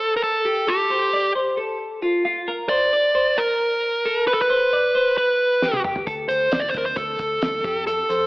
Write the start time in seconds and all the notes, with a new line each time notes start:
Already playing: A4
0.17 A#4
0.23 A4
0.45 G4
0.68 G4 A4
0.90 C5
1.13 D5
1.35 C5
1.57 A4
2.02 F4
2.25 F4
2.48 A#4
2.69 C5 D5
2.93 D5
3.15 C5
3.38 A#4
4.06 A4
4.27 B4
4.34 A4
4.42 B4
4.50 C5
4.73 D5
4.95 C5
5.17 B4
5.62 G4, snare
5.73 high tom
5.84 G4, mid tom
5.96 floor tom
6.07 D2 A4, kick, closed hi-hat
6.29 D2 C5, closed hi-hat
6.51 D2 D5, snare, closed hi-hat
6.60 D5
6.69 C5
6.74 D2 A#4 C5, kick, closed hi-hat
6.86 C5
6.96 D2 A4, kick, closed hi-hat
7.19 D2, kick, closed hi-hat
7.42 D2, snare, closed hi-hat
7.64 F2 G4, kick, closed hi-hat
7.87 A4, closed hi-hat
8.09 F2 C5, closed hi-hat